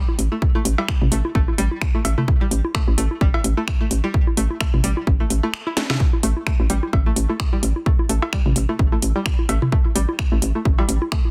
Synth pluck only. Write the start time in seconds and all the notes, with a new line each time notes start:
0.32 A3
0.55 A3
0.78 G3
1.12 A3
1.35 A3
1.58 G3
1.95 A3
2.18 A3
2.41 G3
2.75 A3
2.98 A3
3.21 G3
3.57 A3
3.81 A3
4.04 G3
4.37 A3
4.61 A3
4.84 G3
5.20 A3
5.43 A3
5.67 E4
5.77 A3
6.23 A3
6.47 A3
6.70 G3
7.06 A3
7.29 A3
7.53 G3
7.86 A3
8.09 A3
8.33 G3
8.69 A3
8.92 A3
9.16 G3
9.49 A3
9.72 A3
9.95 G3
10.32 A3
10.55 A3
10.78 G3
11.12 A3